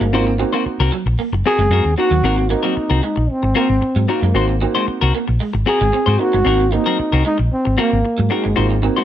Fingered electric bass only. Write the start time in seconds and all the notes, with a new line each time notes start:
0.01 G1
0.13 G#1
0.66 muted fingered electric bass stroke
0.80 C2
1.06 A#1
1.18 muted fingered electric bass stroke
1.32 F#1
1.58 F#1
1.71 F#2
1.85 D#2
2.11 D#2
2.23 G#1
2.77 muted fingered electric bass stroke
2.91 C2
3.17 A#1
3.30 muted fingered electric bass stroke
3.43 G#1
3.70 G#1
3.82 muted fingered electric bass stroke
3.96 G#2
4.22 F#2
4.34 G#1
4.88 muted fingered electric bass stroke
5.02 C2
5.29 A#1
5.41 muted fingered electric bass stroke
5.54 G#1
5.81 G#1
6.07 G#2
6.34 G1
6.46 G#1
7.00 muted fingered electric bass stroke
7.13 C2
7.39 A#1
7.53 muted fingered electric bass stroke
7.67 G#1
7.93 G#1
8.19 G#2
8.46 G1
8.58 G#1